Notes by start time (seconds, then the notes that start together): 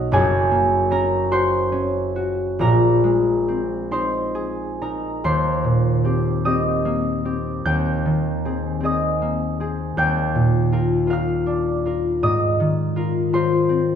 Already playing: B1 B3 C#4 D#4 F#4 F#5 F#6
0.12 F#1 F#2 G#4 G#5
0.51 A#3
0.91 C#4 A#4 A#5
1.31 F#4 C5 C6
1.72 C#4
2.16 F#4
2.59 A#1 A#2 A#4 A#5
3.04 G#3
3.48 C4
3.91 D#4 C5 C6
4.35 G#4
4.82 D#4 A#4 A#5
5.24 D#2 C5 C6
5.64 A#2
6.04 C4 G4
6.45 C4 G4 D#5 D#6
6.85 A#3
7.25 C4 G4
7.65 D#2 G5 G6
8.05 D#3
8.45 C4 G#4
8.81 C4 G#4
8.85 D#5 D#6
9.22 A#3
9.60 C4 G#4
9.97 D#2 G5 G6
10.35 A#2
10.72 F4 A#4
11.07 F4 A#4 F5
11.13 F6
11.46 D4
11.86 F4 A#4
12.23 G#2 D#5 D#6
12.60 D#3
12.96 F4 A#4
13.33 F4 A#4 C5 C6
13.69 C4